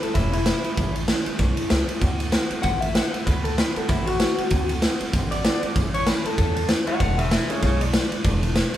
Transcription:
0.01 G3 C#4 E4 A4, muted upright bass stroke, ride
0.14 E1 A2 E3 G3 C#4 E4, kick, snare, ride
0.32 G3 C#4 E4, ride
0.44 E3 G3 C#4 E4, snare, ride
0.63 G3 C#4 E4, muted upright bass stroke, ride
0.76 A1 A2 E3 G3 C#4 E4, kick, ride
0.95 G3 C#4 E4, ride
1.08 E3 G3 C#4 E4, snare, ride
1.25 G3 C#4 E4, muted upright bass stroke, ride
1.39 B1 A2 E3 G3 C#4 E4, kick, snare, ride
1.57 G3 C#4 E4, ride
1.70 C#2 E3 G3 C#4 E4, snare, ride
1.88 G3 C#4 E4, muted upright bass stroke, ride
2.00 D2 D3 A3 C4 F#4, kick, ride
2.20 A3 C4 F#4, ride
2.32 D3 A3 C4 F#4, snare, ride
2.51 A3 C4 F#4, muted upright bass stroke, ride
2.62 A1 D3 A3 C4 F#4 F#5, kick, snare, ride
2.81 A3 C4 E5, ride
2.94 D3 A3 C4 F#4 F#5, snare, ride
3.13 A3 C4 F#4 E5, muted upright bass stroke, ride
3.26 D2 D3 A3 C4 F#4 B4, kick, ride
3.44 A3 C4 F#4 A4, ride
3.58 D3 A3 C4 F#4 B4, snare, ride
3.76 A3 C4 F#4 A4, muted upright bass stroke, ride
3.88 A1 D3 A3 C4 E4 F#4, kick, snare, ride
4.06 C4 F#4, ride
4.11 A3
4.20 D3 A3 C4 F#4, snare, ride
4.38 C4 F#4, muted upright bass stroke, ride
4.42 A3
4.50 D2 D3 A3 C4 F#4, kick, ride
4.69 A3 C4 F#4, ride
4.82 D3 A3 C4 F#4, snare, ride
5.01 A3 C4 F#4, muted upright bass stroke, ride
5.13 A1 D3 A3 C4 F#4, kick, snare, ride
5.31 A3 C4 F#4 D5, ride
5.43 D3 C4 F#4, snare, ride
5.62 A3 C4, muted upright bass stroke, ride
5.76 A1 A2 E3 G3 C#4 E4, kick, ride
5.94 G3 C#4 E4 C#5, ride
6.07 E3 G3 C#4 E4 B4, snare, ride
6.25 G3 C#4 E4 A4, muted upright bass stroke, ride
6.38 E2 A2 E3 G3 C#4 E4 A4, kick, snare, ride
6.56 G3 E4, ride
6.69 E3 G3 C#4 E4, snare, ride
6.87 G3 C#4 E4 C#5 F#5, muted upright bass stroke, ride
6.99 E1 E2 B2 E3 G#3 D4 E4 D5 F#5, kick, ride
7.18 E3 G#3 D4 E4 B4 E5, ride
7.31 E3 G#3 D4 E4 B4 E5, snare, ride
7.49 E3 G#3 D4 E4 G#4 C#5, muted upright bass stroke, ride
7.62 B1 E2 B2 E3 G#3 D4 E4 G#4 C#5, kick, snare, ride
7.80 E3 G#3 D4 E4 D5, ride
7.93 E3 G#3 D4 E4, snare, ride
8.12 E3 G#3 D4 E4, muted upright bass stroke, ride
8.24 E1 E2 B2 E3 G#3 D4 E4, kick, ride
8.43 E3 G#3 D4 E4, ride
8.56 E3 G#3 D4 E4, snare, ride
8.74 muted upright bass stroke, ride

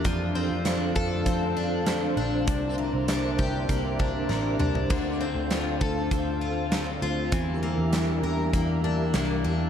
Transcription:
Already playing: A#3 D4 G4
0.05 F2 F3 A4 C5 F5, kick, closed hi-hat
0.35 C4
0.50 F2
0.65 D4 F5, snare, closed hi-hat
0.96 F2 A4, kick
1.26 F2 C4, kick, closed hi-hat
1.57 D4
1.86 C4 C5, snare, closed hi-hat
2.17 A#1 D4
2.47 C2 C3 A#4 E5, kick, closed hi-hat
2.78 A#3
2.94 C2
3.08 D4, snare, closed hi-hat
3.39 C2 G4, kick
3.69 C2 A#3, kick, closed hi-hat
3.99 D4, kick
4.29 A1 A#3, snare
4.59 C2 D4, mid tom
4.75 floor tom
4.89 D2 D3 A4 F5, kick, crash
5.21 C4
5.35 D2
5.51 F4, snare, closed hi-hat
5.81 D2 A4, kick
6.11 D2 C4, kick, closed hi-hat
6.41 F4
6.72 C4, snare, closed hi-hat
7.02 D2 F4
7.32 E2 E3 C4 G4 A#4 E5, kick, closed hi-hat
7.53 G4
7.63 A#3
7.78 E2
7.93 D4, snare, closed hi-hat
8.23 E2 A#4
8.53 E2 A#3, kick, closed hi-hat
8.84 D4
9.14 C2 A#3 D4, snare, closed hi-hat
9.44 E2 D4

